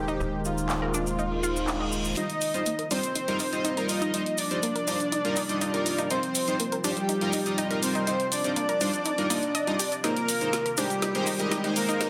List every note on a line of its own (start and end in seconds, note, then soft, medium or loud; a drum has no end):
0.00 0.18 D#1 medium
0.00 2.13 C3 medium
0.00 2.13 D#3 medium
0.00 2.13 G#3 medium
0.00 2.14 G#3 medium
0.00 2.13 A#3 medium
0.00 2.13 D#4 medium
0.00 2.14 D#4 medium
0.00 0.40 G4 medium
0.00 2.14 A#4 medium
0.00 2.14 C5 medium
0.08 0.12 D#4 loud
0.08 cabasa soft
0.20 2.15 D#1 medium
0.20 0.25 D#4 medium
0.20 cabasa soft
0.45 2.07 F4 loud
0.45 cabasa medium
0.58 cabasa soft
0.69 0.77 A#3 medium
0.69 clap loud
0.69 cabasa soft
0.82 0.92 A#4 medium
0.94 1.01 D4 medium
0.94 cabasa medium
1.07 cabasa soft
1.19 1.23 D#4 medium
1.19 reverse cymbal medium
1.19 cabasa soft
1.43 1.50 F4 loud
1.43 cabasa medium
1.56 cabasa soft
1.68 1.79 D4 medium
1.68 clap loud
1.68 cabasa soft
1.80 1.85 D#5 medium
1.92 cabasa medium
2.05 cabasa soft
2.17 12.10 C3 medium
2.17 10.00 F3 medium
2.17 2.25 G3 medium
2.17 10.00 G3 medium
2.17 6.07 A#3 medium
2.17 2.21 D#4 medium
2.17 2.81 D#4 medium
2.17 2.25 D#4 medium
2.17 2.25 F4 medium
2.17 12.10 F4 medium
2.17 2.25 C5 medium
2.17 2.81 D#5 loud
2.17 closed hi-hat medium
2.17 cabasa soft
2.30 closed hi-hat soft
2.41 open hi-hat loud
2.41 cabasa medium
2.54 2.62 G3 medium
2.54 2.62 D#4 medium
2.54 2.62 F4 medium
2.54 2.62 C5 medium
2.54 closed hi-hat soft
2.54 cabasa soft
2.66 2.73 A#3 medium
2.66 closed hi-hat medium
2.66 cabasa soft
2.79 2.89 A#4 medium
2.79 closed hi-hat soft
2.91 2.99 G3 medium
2.91 3.80 C4 medium
2.91 2.98 D4 medium
2.91 2.99 D#4 medium
2.91 2.99 F4 medium
2.91 3.79 C5 medium
2.91 2.99 C5 loud
2.91 3.80 C5 loud
2.91 open hi-hat medium
2.91 cabasa medium
3.03 closed hi-hat soft
3.03 cabasa soft
3.15 3.20 D#4 medium
3.15 closed hi-hat medium
3.15 cabasa soft
3.28 3.40 G3 loud
3.28 3.40 D#4 medium
3.28 3.40 F4 medium
3.28 3.40 A#4 loud
3.28 closed hi-hat soft
3.40 3.47 D#4 loud
3.40 open hi-hat loud
3.40 cabasa medium
3.53 3.74 G3 medium
3.53 3.74 D#4 medium
3.53 3.74 F4 medium
3.53 3.74 D#5 medium
3.53 closed hi-hat soft
3.53 cabasa soft
3.65 3.72 D#4 loud
3.65 closed hi-hat medium
3.65 cabasa soft
3.77 4.11 G3 medium
3.77 4.11 D#4 medium
3.77 4.11 F4 medium
3.77 3.87 A#4 medium
3.77 4.11 A#4 medium
3.77 closed hi-hat soft
3.89 4.34 D#4 medium
3.89 4.34 D#5 medium
3.89 open hi-hat medium
3.89 cabasa medium
4.02 4.06 D#4 loud
4.02 closed hi-hat soft
4.02 cabasa soft
4.14 4.22 G3 medium
4.14 4.18 D#4 medium
4.14 4.22 D#4 medium
4.14 4.22 F4 medium
4.14 4.22 C5 medium
4.14 closed hi-hat medium
4.14 cabasa soft
4.26 closed hi-hat soft
4.38 6.01 D4 medium
4.38 6.01 D5 loud
4.38 open hi-hat loud
4.38 cabasa medium
4.51 4.59 G3 medium
4.51 4.59 D#4 medium
4.51 4.59 F4 medium
4.51 4.59 C5 medium
4.51 closed hi-hat soft
4.51 cabasa soft
4.63 4.70 A#3 medium
4.63 closed hi-hat medium
4.63 cabasa soft
4.75 4.86 A#4 medium
4.75 closed hi-hat soft
4.88 4.95 G3 medium
4.88 4.95 D4 loud
4.88 4.95 D#4 medium
4.88 4.95 F4 medium
4.88 4.95 C5 loud
4.88 open hi-hat medium
4.88 cabasa medium
5.00 closed hi-hat soft
5.00 cabasa soft
5.12 5.16 D#4 medium
5.12 closed hi-hat medium
5.12 cabasa soft
5.25 5.37 G3 loud
5.25 5.37 D#4 medium
5.25 5.37 F4 medium
5.25 5.37 A#4 loud
5.25 closed hi-hat soft
5.36 5.44 D#4 loud
5.36 open hi-hat loud
5.36 cabasa medium
5.49 5.71 G3 medium
5.49 5.71 D#4 medium
5.49 5.71 F4 medium
5.49 5.71 D#5 medium
5.49 closed hi-hat soft
5.49 cabasa medium
5.61 5.69 D#4 loud
5.61 closed hi-hat medium
5.61 cabasa soft
5.74 6.08 G3 medium
5.74 6.08 D#4 medium
5.74 6.08 F4 medium
5.74 6.08 A#4 medium
5.74 5.84 A#4 medium
5.74 closed hi-hat soft
5.86 open hi-hat medium
5.86 cabasa medium
5.98 6.03 D#4 loud
5.98 closed hi-hat soft
5.98 cabasa soft
6.10 6.18 G3 medium
6.10 6.75 C4 medium
6.10 10.00 C4 medium
6.10 6.15 D#4 medium
6.10 6.18 D#4 medium
6.10 6.18 F4 medium
6.10 6.75 C5 loud
6.10 6.18 C5 medium
6.10 6.75 C5 loud
6.10 closed hi-hat medium
6.10 cabasa soft
6.23 closed hi-hat soft
6.35 open hi-hat loud
6.35 cabasa loud
6.47 6.55 G3 medium
6.47 6.55 D#4 medium
6.47 6.55 F4 medium
6.47 6.55 C5 medium
6.47 closed hi-hat soft
6.47 cabasa medium
6.60 6.67 A#3 medium
6.60 closed hi-hat medium
6.60 cabasa soft
6.72 6.83 A#4 medium
6.72 closed hi-hat soft
6.84 7.73 G3 medium
6.84 6.92 G3 medium
6.84 6.91 D4 loud
6.84 6.92 D#4 medium
6.84 6.92 F4 medium
6.84 7.73 G4 loud
6.84 7.73 G4 medium
6.84 6.92 C5 loud
6.84 open hi-hat medium
6.84 cabasa medium
6.97 closed hi-hat soft
6.97 cabasa medium
7.09 7.13 D#4 medium
7.09 closed hi-hat medium
7.09 cabasa soft
7.21 7.34 G3 medium
7.21 7.34 D#4 medium
7.21 7.34 F4 medium
7.21 7.34 A#4 loud
7.21 closed hi-hat soft
7.33 7.41 D#4 loud
7.33 open hi-hat loud
7.33 cabasa loud
7.46 7.68 G3 medium
7.46 7.68 D#4 medium
7.46 7.68 F4 medium
7.46 7.68 D#5 medium
7.46 closed hi-hat soft
7.46 cabasa medium
7.58 7.65 D#4 loud
7.58 closed hi-hat medium
7.58 cabasa soft
7.71 8.04 G3 medium
7.71 8.04 D#4 medium
7.71 8.04 F4 medium
7.71 7.81 A#4 medium
7.71 8.04 A#4 medium
7.71 closed hi-hat soft
7.83 8.27 C4 medium
7.83 8.27 C5 medium
7.83 8.27 C5 loud
7.83 open hi-hat medium
7.83 cabasa medium
7.95 7.99 D#4 loud
7.95 closed hi-hat soft
7.95 cabasa soft
8.07 8.15 G3 medium
8.07 8.11 D#4 medium
8.07 8.15 D#4 medium
8.07 8.15 F4 medium
8.07 8.15 C5 medium
8.07 closed hi-hat medium
8.07 cabasa soft
8.20 closed hi-hat soft
8.32 9.94 D4 medium
8.32 9.94 D5 loud
8.32 open hi-hat loud
8.32 cabasa loud
8.44 8.52 G3 medium
8.44 8.52 D#4 medium
8.44 8.52 F4 medium
8.44 8.52 C5 medium
8.44 closed hi-hat soft
8.44 cabasa medium
8.56 8.64 A#3 medium
8.56 closed hi-hat medium
8.56 cabasa soft
8.69 8.79 A#4 medium
8.69 closed hi-hat soft
8.81 8.89 G3 loud
8.81 8.88 D4 loud
8.81 8.89 D#4 medium
8.81 8.89 F4 medium
8.81 8.89 C5 loud
8.81 open hi-hat loud
8.81 cabasa medium
8.94 closed hi-hat soft
8.94 cabasa soft
9.05 9.10 D#4 medium
9.05 closed hi-hat medium
9.05 cabasa soft
9.18 9.28 G3 medium
9.18 9.28 D#4 medium
9.18 9.28 F4 medium
9.18 9.28 A#4 loud
9.18 closed hi-hat soft
9.30 9.38 G3 loud
9.30 9.41 A#3 loud
9.30 9.38 D#4 medium
9.30 9.38 F4 medium
9.30 9.38 D#5 loud
9.30 open hi-hat loud
9.30 cabasa medium
9.42 closed hi-hat soft
9.42 cabasa soft
9.55 9.66 D#5 loud
9.55 closed hi-hat medium
9.55 cabasa soft
9.67 9.75 G3 medium
9.67 9.78 D4 medium
9.67 9.75 D#4 medium
9.67 9.75 F4 medium
9.67 9.75 D#5 loud
9.67 closed hi-hat soft
9.79 9.87 G4 medium
9.79 open hi-hat medium
9.79 cabasa medium
9.92 closed hi-hat soft
9.92 cabasa medium
10.04 12.10 D#2 medium
10.04 12.10 D#3 medium
10.04 10.12 G#3 medium
10.04 10.68 A#3 medium
10.04 12.10 A#3 medium
10.04 10.08 D#4 medium
10.04 10.12 D#4 medium
10.04 10.68 A#4 loud
10.04 10.12 A#4 medium
10.04 10.12 C5 medium
10.04 snare soft
10.04 closed hi-hat medium
10.04 cabasa soft
10.17 closed hi-hat soft
10.29 open hi-hat loud
10.29 cabasa loud
10.41 10.49 G#3 medium
10.41 10.49 D#4 medium
10.41 10.49 A#4 medium
10.41 10.49 C5 medium
10.41 closed hi-hat soft
10.41 cabasa soft
10.53 10.60 A#3 medium
10.53 snare medium
10.53 closed hi-hat medium
10.53 cabasa soft
10.66 10.76 A#4 medium
10.66 closed hi-hat soft
10.77 11.66 G3 medium
10.77 10.86 G#3 medium
10.77 10.85 D4 loud
10.77 10.86 D#4 medium
10.77 11.66 G4 loud
10.77 11.66 G4 medium
10.77 10.86 A#4 medium
10.77 10.86 C5 loud
10.77 open hi-hat medium
10.77 cabasa medium
10.90 closed hi-hat soft
10.90 cabasa medium
11.02 11.07 D#4 medium
11.02 snare soft
11.02 closed hi-hat medium
11.02 cabasa soft
11.15 11.27 G#3 loud
11.15 11.27 D#4 medium
11.15 11.27 A#4 medium
11.15 11.27 C5 loud
11.15 closed hi-hat soft
11.27 11.34 D#4 loud
11.27 open hi-hat loud
11.27 cabasa loud
11.39 11.61 G#3 medium
11.39 11.61 D#4 medium
11.39 11.61 A#4 medium
11.39 11.61 D#5 medium
11.39 closed hi-hat soft
11.39 cabasa soft
11.51 11.59 D#4 loud
11.51 snare medium
11.51 closed hi-hat medium
11.51 cabasa soft
11.64 11.98 G#3 medium
11.64 11.74 D#4 medium
11.64 11.98 D#4 medium
11.64 11.98 A#4 medium
11.64 11.98 C5 medium
11.64 closed hi-hat soft
11.76 12.10 A#3 medium
11.76 12.10 A#4 medium
11.76 12.10 A#4 loud
11.76 open hi-hat medium
11.76 cabasa medium
11.89 11.93 D#4 loud
11.89 closed hi-hat soft
11.89 cabasa medium
12.01 12.09 G#3 medium
12.01 12.09 D#4 medium
12.01 12.05 D#4 medium
12.01 12.09 A#4 medium
12.01 12.09 C5 medium
12.01 snare medium
12.01 closed hi-hat medium
12.01 cabasa soft